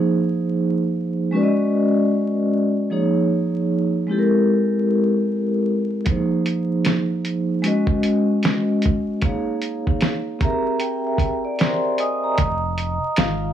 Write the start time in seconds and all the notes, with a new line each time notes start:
Already playing: F3 A#3 D#4 G#4 C5
1.31 G#3 C#4 F#4 B4
1.37 D5
1.43 D#5
2.90 F3 A#3 D#4 G#4 C#5
4.07 G#3 C4 E4 G4
4.12 A4
4.19 A#4
6.05 F3 A#3 D#4, kick, closed hi-hat
6.09 G#4 C5
6.46 closed hi-hat
6.85 snare, closed hi-hat
7.25 closed hi-hat
7.62 G#3 C#4 F#4 B4, closed hi-hat
7.68 D#5
7.87 kick
8.03 closed hi-hat
8.43 snare, closed hi-hat
8.82 kick, closed hi-hat
9.22 A#3 D#4 G#4 C#5 F5, kick, closed hi-hat
9.62 closed hi-hat
9.87 kick
10.01 snare, closed hi-hat
10.39 C4 G4 G#4 A#4 A#5, kick, closed hi-hat
10.44 E5
10.80 G5, closed hi-hat
11.07 E5
11.18 kick, closed hi-hat
11.45 D5
11.59 C5 C6, snare, closed hi-hat
11.85 E5
11.98 D#5 G#5 D#6, closed hi-hat
12.24 A#5
12.38 F1, kick, closed hi-hat
12.78 closed hi-hat
13.16 G#1 F4 F5, finger snap, snare, closed hi-hat